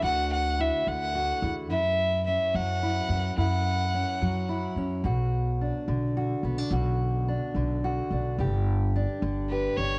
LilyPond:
<<
  \new Staff \with { instrumentName = "Fiddle" } { \time 6/8 \key b \minor \tempo 4. = 72 fis''8 fis''8 e''8 fis''4 r8 | e''4 e''8 fis''4. | fis''2~ fis''8 r8 | r2. |
r2. | r2 b'8 cis''8 | }
  \new Staff \with { instrumentName = "Steel-string acoustic guitar" } { \time 6/8 \key b \minor << { fis'4 e'4 fis'8 e'8 | e'4 cis'4 e'8 cis'8 | e'4 cis'4 e'8 cis'8 | fis'4 d'4 fis'8 b16 d'16 |
fis'4 d'4 fis'8 d'8 | g'4 d'4 g'8 d'8 | } \\ { <d, d>4. d4. | fis,4. fis4. | fis,4. fis4. | b,4. d4. |
b,4. d4. | g,4. d4. | } >> }
  \new Staff \with { instrumentName = "Upright bass" } { \clef bass \time 6/8 \key b \minor d,4. d,4 e,8 | fis,4. fis,4 fis,8 | fis,4. fis,4 fis,8 | b,,4. b,,4 b,,8 |
b,,4. b,,4 b,,8 | g,,4. g,,4 g,,8 | }
>>